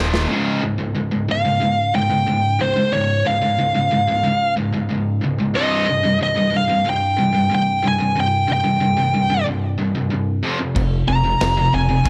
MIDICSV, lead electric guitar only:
0, 0, Header, 1, 2, 480
1, 0, Start_track
1, 0, Tempo, 652884
1, 226, Time_signature, 4, 2, 24, 8
1, 8891, End_track
2, 0, Start_track
2, 0, Title_t, "Lead electric guitar"
2, 0, Program_c, 0, 29
2, 967, Note_on_c, 0, 77, 114
2, 1431, Note_off_c, 0, 77, 0
2, 1434, Note_on_c, 0, 79, 108
2, 1920, Note_on_c, 0, 72, 97
2, 1929, Note_off_c, 0, 79, 0
2, 2152, Note_off_c, 0, 72, 0
2, 2155, Note_on_c, 0, 73, 91
2, 2401, Note_on_c, 0, 77, 93
2, 2402, Note_off_c, 0, 73, 0
2, 3331, Note_off_c, 0, 77, 0
2, 4092, Note_on_c, 0, 75, 88
2, 4535, Note_off_c, 0, 75, 0
2, 4581, Note_on_c, 0, 75, 94
2, 4816, Note_off_c, 0, 75, 0
2, 4826, Note_on_c, 0, 77, 91
2, 5059, Note_off_c, 0, 77, 0
2, 5070, Note_on_c, 0, 79, 110
2, 5541, Note_off_c, 0, 79, 0
2, 5550, Note_on_c, 0, 79, 100
2, 5780, Note_off_c, 0, 79, 0
2, 5793, Note_on_c, 0, 80, 108
2, 6021, Note_off_c, 0, 80, 0
2, 6030, Note_on_c, 0, 79, 107
2, 6237, Note_off_c, 0, 79, 0
2, 6273, Note_on_c, 0, 79, 91
2, 6942, Note_off_c, 0, 79, 0
2, 8148, Note_on_c, 0, 82, 84
2, 8635, Note_on_c, 0, 80, 97
2, 8639, Note_off_c, 0, 82, 0
2, 8891, Note_off_c, 0, 80, 0
2, 8891, End_track
0, 0, End_of_file